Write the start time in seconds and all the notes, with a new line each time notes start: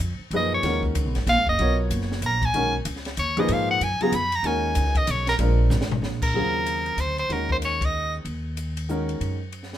0.00 F2
0.19 muted upright bass stroke
0.31 F#2 A#2 F3 D#4 G#4 B4, ride
0.36 D#5
0.54 C#5
0.63 D#2 D#3 G#3 C#4 F#4 A#4, snare, ride
0.83 kick
0.95 C#2, hi-hat pedal, ride
1.05 B1
1.15 G#1, snare, ride
1.26 A#1 F5, snare, hi-hat pedal, ride
1.36 G#1
1.47 F#1 D#5, kick
1.59 B1 F#3 B3 F4 A#4 C#5, ride
1.90 F#1, hi-hat pedal, ride
2.01 snare
2.12 snare
2.21 A#1, hi-hat pedal, ride
2.26 A#5
2.42 G#5, kick, ride
2.54 B1 D#3 G#3 C#4 F#4 A#4, ride
2.85 C#2, hi-hat pedal, ride
2.96 snare
3.05 snare, ride
3.17 D#2 C#5, hi-hat pedal, ride
3.37 A#2 F3 D#4 G#4 B4 D#5, ride
3.48 G#2, ride
3.53 F5
3.71 F#5
3.80 F#2 G#5, hi-hat pedal, ride
4.00 C#3 F#3 B3 F4 G#4 A#5, muted upright bass stroke, ride
4.12 F2 B5, hi-hat pedal, ride
4.32 A#5, ride
4.43 D#2 D#3 G#3 C#4 F#4 A#4 G#5, ride
4.75 C#2, hi-hat pedal, ride
4.95 D#5, kick, ride
5.07 B1 C#5, hi-hat pedal, ride
5.27 A#4, snare, ride
5.39 A#1 G#3 C4 D4 F4 A#4, ride
5.70 G#1, snare, hi-hat pedal
5.81 snare
5.92 floor tom
6.02 A#1, snare
6.22 A#4, kick, crash
6.34 D#2 C#3 F#3 C4 F4 G#4
6.66 hi-hat pedal, ride
6.86 ride
6.97 D2 C5, hi-hat pedal, ride
7.18 C5, ride
7.29 D#2 D#3 G#3 C#4 F#4 A#4, ride
7.49 C5, kick
7.62 C#5, hi-hat pedal, ride
7.81 D#5, kick, ride
8.25 D#2, ride
8.57 hi-hat pedal, ride
8.77 ride
8.89 D#3 G#3 C#4 F#4 A#4, hi-hat pedal
9.09 ride
9.20 F#2, ride
9.52 ride
9.63 snare
9.73 snare